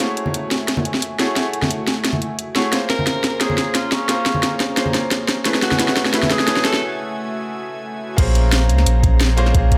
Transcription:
0.00 F#1 A3 E4 F#4 G#4 C#5 E5 G#5
0.17 closed hi-hat
0.26 high conga
0.34 closed hi-hat
0.51 A1, snare, closed hi-hat
0.68 snare, closed hi-hat
0.77 high conga
0.85 closed hi-hat
0.94 snare
1.02 closed hi-hat
1.19 A3 E4 F#4 G#4 C#5, snare, closed hi-hat
1.35 F#1 A3 E4 F#4 G#4 C#5, snare, closed hi-hat
1.53 closed hi-hat
1.62 snare, high conga
1.71 closed hi-hat
1.87 snare, closed hi-hat
2.05 snare, closed hi-hat
2.13 high conga
2.22 C#2, closed hi-hat
2.39 closed hi-hat
2.55 C#2 A3 E4 F#4 G#4 C#5, snare, closed hi-hat
2.65 F#1
2.71 A#1 A#3 C#4 F4 G#4 C5 A#5, snare, closed hi-hat
2.90 A#4, snare, closed hi-hat
2.99 high conga
3.07 snare, closed hi-hat
3.24 C#2, snare, closed hi-hat
3.39 A#1 A#3 C#4 F4 G#4 C5, snare, closed hi-hat
3.50 high conga
3.58 snare, closed hi-hat
3.75 F4, snare, closed hi-hat
3.92 C#4, snare, closed hi-hat
4.07 A#3 C#4 F4 G#4 C5, snare, closed hi-hat
4.26 snare, closed hi-hat
4.34 high conga
4.43 snare, closed hi-hat
4.60 C#2, snare, closed hi-hat
4.76 A#3 C#4 F4 G#4 C5, snare, closed hi-hat
4.86 high conga
4.94 snare, closed hi-hat
5.11 snare, closed hi-hat
5.28 snare, closed hi-hat
5.44 A3 C#4 E4 F#4 G#4 B4 E5 G#5, snare, closed hi-hat
5.54 snare
5.62 F#4, snare, closed hi-hat
5.71 snare, high conga
5.78 A3 C#4 E4 G#4 B4, snare, closed hi-hat
5.88 snare
5.97 snare, closed hi-hat
6.05 snare
6.12 A3 C#4 E4 G#4 B4, snare, closed hi-hat
6.22 snare, high conga
6.30 G#4, snare, closed hi-hat
6.39 snare
6.46 A3 C#4 E4 G#4 B4, snare, closed hi-hat
6.56 snare
6.65 A4, snare, closed hi-hat
6.73 snare
8.16 A#1 A#3 C#4 F4 G#4 C5 A#5, kick, closed hi-hat, crash
8.35 closed hi-hat
8.52 snare, closed hi-hat
8.69 C#2, closed hi-hat
8.78 snare
8.86 A#1, closed hi-hat
9.03 kick, closed hi-hat
9.21 snare, closed hi-hat
9.37 A#3 C#4 F4 G#4 C5, closed hi-hat
9.46 snare
9.53 A#1 A#3 C#4 F4 G#4 C5, kick, closed hi-hat
9.71 kick, closed hi-hat

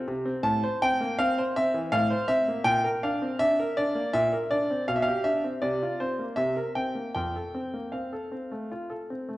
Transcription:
0.08 C3
0.25 C4
0.43 A2 A5
0.63 C5
0.82 C4 G5
1.00 A#3
1.18 C4 F5
1.38 C5
1.56 C4 E5
1.74 E3
1.92 A2 F5
2.10 C5
2.28 C4 E5
2.48 A#3
2.64 A#2 G5
2.84 A#4
3.03 D4 F5
3.22 C4
3.39 D4 E5
3.60 A#4
3.77 D4 D5
3.95 A#3
4.13 A#2 E5
4.33 A#4
4.51 D4 D5
4.71 C4
4.88 B2 F5
4.96 E5
5.02 F5
5.07 G4
5.24 D4 E5
5.44 C4
5.62 C3 D5
5.83 F4
6.00 C4 C5
6.19 A#3
6.36 C3 E5
6.56 A#4
6.75 C4 G5
6.95 A#3
7.15 F2 G5
7.36 A4
7.54 C4
7.74 A#3
7.92 C4 F5
8.13 A4
8.32 C4
8.52 A3
8.72 F4
8.90 A4
9.10 C4
9.29 A3

